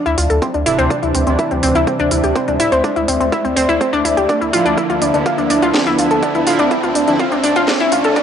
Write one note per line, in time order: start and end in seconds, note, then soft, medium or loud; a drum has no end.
0.00 0.38 D4 medium
0.00 8.12 D5 medium
0.00 8.12 E5 medium
0.00 0.38 A5 medium
0.00 riser medium
0.06 0.15 D2 medium
0.06 0.15 E4 loud
0.06 closed hi-hat soft
0.18 0.27 D2 medium
0.18 0.28 F4 medium
0.18 open hi-hat loud
0.30 0.39 D2 medium
0.30 0.39 A4 medium
0.30 closed hi-hat soft
0.42 0.54 C4 medium
0.42 4.25 C5 medium
0.42 kick loud
0.42 closed hi-hat soft
0.54 0.63 D2 medium
0.54 0.60 D4 medium
0.54 closed hi-hat soft
0.66 0.76 D1 medium
0.66 1.24 C3 medium
0.66 1.24 E3 medium
0.66 1.24 D4 medium
0.66 0.78 E4 loud
0.66 open hi-hat loud
0.79 0.88 D2 medium
0.79 0.90 C4 loud
0.79 closed hi-hat soft
0.90 1.00 D4 medium
0.90 kick loud
0.90 closed hi-hat soft
1.03 1.12 D2 medium
1.03 1.12 E4 medium
1.03 closed hi-hat soft
1.15 1.24 D2 loud
1.15 1.26 C4 medium
1.15 open hi-hat loud
1.27 1.36 D2 medium
1.27 2.57 C3 medium
1.27 2.57 E3 medium
1.27 1.33 C4 medium
1.27 2.57 D4 medium
1.27 closed hi-hat soft
1.39 1.50 E4 medium
1.39 kick loud
1.39 closed hi-hat soft
1.51 1.60 D2 medium
1.51 1.61 C4 medium
1.51 closed hi-hat soft
1.63 1.72 D2 loud
1.63 1.73 C4 loud
1.63 open hi-hat loud
1.75 1.84 D2 medium
1.75 1.81 E4 loud
1.75 closed hi-hat soft
1.87 1.97 C4 medium
1.87 kick loud
1.87 closed hi-hat soft
1.99 2.09 D2 medium
1.99 2.09 D4 loud
1.99 closed hi-hat soft
2.11 2.21 D2 medium
2.11 2.21 E4 medium
2.11 open hi-hat loud
2.24 2.33 D2 medium
2.24 2.33 G4 medium
2.24 closed hi-hat soft
2.35 2.47 C4 medium
2.35 kick loud
2.35 closed hi-hat soft
2.48 2.57 D2 medium
2.48 2.54 D4 medium
2.48 closed hi-hat soft
2.60 2.69 D1 loud
2.60 2.71 E4 loud
2.60 open hi-hat loud
2.72 2.81 D2 medium
2.72 2.83 C4 loud
2.72 closed hi-hat soft
2.84 2.94 D4 medium
2.84 kick loud
2.84 closed hi-hat soft
2.96 3.05 D2 medium
2.96 3.06 E4 medium
2.96 closed hi-hat soft
3.08 3.17 D2 loud
3.08 3.19 C4 medium
3.08 open hi-hat loud
3.20 3.29 D2 medium
3.20 3.26 C4 medium
3.20 closed hi-hat soft
3.32 3.44 E4 medium
3.32 kick loud
3.32 closed hi-hat soft
3.45 3.54 D2 medium
3.45 3.54 C4 medium
3.45 closed hi-hat soft
3.56 3.66 D2 loud
3.56 3.66 C4 loud
3.56 open hi-hat loud
3.69 3.78 D2 medium
3.69 3.74 E4 loud
3.69 closed hi-hat soft
3.81 3.90 C4 medium
3.81 kick loud
3.81 closed hi-hat soft
3.93 4.02 D2 medium
3.93 4.02 D4 loud
3.93 closed hi-hat soft
4.05 4.14 D2 medium
4.05 4.15 E4 medium
4.05 open hi-hat loud
4.17 4.26 D2 medium
4.17 4.27 G4 medium
4.17 closed hi-hat soft
4.29 4.41 D4 medium
4.29 8.12 D4 medium
4.29 8.12 A5 medium
4.29 kick loud
4.29 closed hi-hat soft
4.41 4.50 D2 medium
4.41 4.47 E4 medium
4.41 closed hi-hat soft
4.53 4.63 D1 loud
4.53 5.11 D3 medium
4.53 5.11 F3 medium
4.53 5.11 E4 medium
4.53 4.65 F4 loud
4.53 open hi-hat loud
4.66 4.75 D2 medium
4.66 4.77 D4 loud
4.66 closed hi-hat soft
4.77 4.87 E4 medium
4.77 kick loud
4.77 closed hi-hat soft
4.90 4.99 D2 medium
4.90 4.99 F4 medium
4.90 closed hi-hat soft
5.02 5.11 D2 loud
5.02 5.13 D4 medium
5.02 open hi-hat loud
5.14 5.23 D2 medium
5.14 6.44 D3 medium
5.14 6.44 F3 medium
5.14 5.20 D4 medium
5.14 6.44 E4 medium
5.14 closed hi-hat soft
5.26 5.38 F4 medium
5.26 kick loud
5.26 closed hi-hat soft
5.38 5.47 D2 medium
5.38 5.48 D4 medium
5.38 closed hi-hat soft
5.50 5.59 D2 loud
5.50 5.60 D4 loud
5.50 open hi-hat loud
5.62 5.71 D2 medium
5.62 5.68 F4 loud
5.62 closed hi-hat soft
5.74 5.84 D4 medium
5.74 kick loud
5.74 snare loud
5.74 closed hi-hat soft
5.86 5.96 D2 medium
5.86 5.96 E4 loud
5.86 closed hi-hat soft
5.98 6.08 D2 loud
5.98 6.08 F4 medium
5.98 open hi-hat loud
6.11 6.20 D2 medium
6.11 6.20 A4 medium
6.11 closed hi-hat soft
6.23 6.34 D4 medium
6.23 kick loud
6.23 closed hi-hat soft
6.35 6.44 D2 medium
6.35 6.41 E4 medium
6.35 closed hi-hat soft
6.47 6.56 D1 loud
6.47 6.64 D3 medium
6.47 6.64 F3 medium
6.47 6.64 E4 loud
6.47 6.59 F4 loud
6.47 open hi-hat loud
6.59 6.68 D2 medium
6.59 6.71 D4 loud
6.59 closed hi-hat soft
6.71 6.81 E4 medium
6.71 kick loud
6.71 closed hi-hat soft
6.83 6.92 D2 medium
6.83 6.93 F4 medium
6.83 closed hi-hat soft
6.95 7.05 D2 loud
6.95 7.07 D4 medium
6.95 open hi-hat loud
7.07 7.17 D2 medium
7.07 7.24 D3 medium
7.07 7.24 F3 medium
7.07 7.13 D4 medium
7.07 7.24 E4 medium
7.07 closed hi-hat soft
7.19 7.31 F4 medium
7.19 kick loud
7.19 closed hi-hat soft
7.32 7.41 D2 medium
7.32 7.41 D4 medium
7.32 closed hi-hat soft
7.44 7.53 D2 loud
7.44 7.53 D4 loud
7.44 open hi-hat loud
7.56 7.65 D2 medium
7.56 7.62 F4 loud
7.56 closed hi-hat soft
7.68 7.78 D4 medium
7.68 kick loud
7.68 snare loud
7.68 closed hi-hat soft
7.80 7.89 D2 medium
7.80 7.90 E4 loud
7.80 closed hi-hat soft
7.92 8.01 D2 loud
7.92 8.02 F4 medium
7.92 open hi-hat loud
8.04 8.13 D2 medium
8.04 8.14 A4 medium
8.04 closed hi-hat soft
8.16 8.23 D4 medium
8.16 8.23 A#4 medium
8.16 8.23 D5 medium
8.16 8.23 G5 medium
8.16 kick loud
8.16 closed hi-hat soft